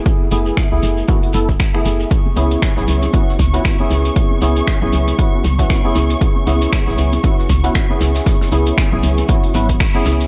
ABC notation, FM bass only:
X:1
M:4/4
L:1/16
Q:"Swing 16ths" 1/4=117
K:C#phr
V:1 name="FM bass" clef=bass
z2 F,,, z2 C,, F,,, z3 F,,, z3 F,,, z | z2 C,, z2 G,,, C,, z3 C,, z3 C,, z | z2 C,, z2 G,,, C,, z3 C,, z3 C,, z | z2 C,, z2 G,,, C,, z3 C,, z3 C,, z |
z2 C,, z2 G,,, C,, z3 G,,, z3 C,, z |]